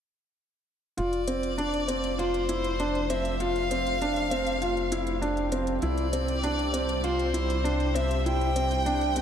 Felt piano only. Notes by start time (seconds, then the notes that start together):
0.97 F4
1.28 C4
1.58 D4
1.88 C4
2.19 F4
2.49 E4
2.80 D4
3.10 C4
3.40 F4
3.71 C4
4.02 D4
4.31 C4
4.62 F4
4.92 E4
5.22 D4
5.52 C4
5.83 E4
6.13 C4
6.44 D4
6.73 C4
7.04 F4
7.34 E4
7.64 D4
7.95 C4
8.26 E4
8.56 C4
8.86 D4
9.16 C4